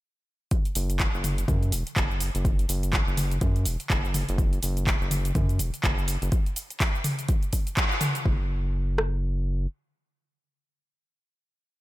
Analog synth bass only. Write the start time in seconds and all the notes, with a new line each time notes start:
0.76 F#1
1.14 F#1
1.48 F#2
1.72 E1
1.97 F#1
2.35 F#1
2.69 F#1
3.07 F#1
3.41 F#2
3.66 E1
3.90 F#1
4.29 F#1
4.63 F#1
5.01 F#1
5.35 F#2
5.60 E1
5.84 F#1
6.22 F#1
8.26 F#1